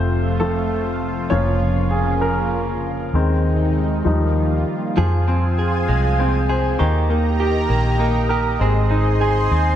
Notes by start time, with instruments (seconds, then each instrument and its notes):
Already playing: fingered electric bass F1, analog synth pad C3 F3 A3 F4, grand piano F3 A3 C4 C5
0.40 grand piano F3 A3 C4 A4
1.30 fingered electric bass F1, analog synth pad C#3 A#3, grand piano F3 A#3 C#4 C#5
1.91 grand piano G#4
2.21 grand piano A#4
3.13 fingered electric bass D#2, analog synth pad C3 D#3 G#3 D#4, grand piano D#3 G#3 C4
4.05 fingered electric bass D#2, analog synth pad D#3 G3 A#3 F4, grand piano F3 G3 D#4
4.97 fingered electric bass F2, grand piano F3, clean electric guitar F3 G#4, analog synth pad F4 G#4 C5 G#5
5.28 clean electric guitar C4, grand piano C4
5.58 grand piano G#4, clean electric guitar G#4
5.89 fingered electric bass C2, clean electric guitar G#3
6.19 clean electric guitar C4, grand piano C4
6.49 clean electric guitar G#4, grand piano C5
6.79 fingered electric bass D#2, grand piano D#3, clean electric guitar A#3 G4, analog synth pad G4 A#4 D#5 A#5
7.10 grand piano A#3, clean electric guitar D#4
7.40 grand piano G4, clean electric guitar G4
7.70 fingered electric bass A#1, clean electric guitar A#3
7.99 grand piano A#3, clean electric guitar D#4
8.29 clean electric guitar G4, grand piano A#4
8.59 fingered electric bass G#1, grand piano G#3, clean electric guitar C4 G#4, analog synth pad G#4 C5 C6
8.90 grand piano D#4, clean electric guitar D#4
9.20 grand piano G#4, clean electric guitar G#4
9.51 fingered electric bass D#2, clean electric guitar C4